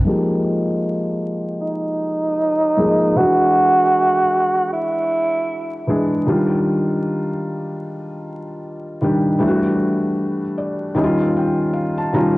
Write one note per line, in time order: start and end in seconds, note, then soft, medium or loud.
0.05 1.06 F3 medium
0.05 1.07 G#3 medium
0.05 1.07 A#3 medium
0.05 1.07 D#4 medium
0.05 1.07 G4 medium
1.61 3.18 D#4 loud
2.77 3.05 F3 medium
2.77 3.05 G#3 medium
2.77 3.06 A#3 medium
2.77 3.06 D#4 medium
2.77 3.06 G#4 medium
3.16 4.17 E3 medium
3.16 4.18 G#3 medium
3.16 4.18 D4 medium
3.16 4.72 F#4 loud
3.16 4.19 F#4 medium
4.73 5.86 E4 medium
5.87 6.16 E3 medium
5.87 6.16 G#3 medium
5.87 6.17 D4 medium
5.87 6.17 G#4 medium
6.26 7.29 D#3 medium
6.26 7.29 G3 medium
6.26 7.29 D4 medium
6.26 7.30 F4 medium
9.01 9.29 D#3 medium
9.01 9.29 G3 medium
9.01 9.30 D4 medium
9.01 9.30 G4 medium
9.38 10.40 E3 medium
9.38 10.41 G3 medium
9.38 10.41 A3 medium
9.38 10.41 D4 medium
9.38 9.48 E4 medium
9.47 10.45 F#4 medium
10.58 10.93 D5 medium
10.95 11.92 D#3 medium
10.95 11.93 G3 medium
10.95 11.93 C#4 medium
10.95 11.05 E4 medium
10.95 11.18 D#5 medium
11.04 11.97 F4 medium
11.21 11.34 F5 medium
11.37 11.72 G5 medium
11.73 11.96 F5 medium
11.98 12.11 A5 medium
12.13 12.38 D#3 medium
12.13 12.38 G3 medium
12.13 12.38 C#4 medium
12.13 12.38 F4 medium
12.13 12.38 A#5 medium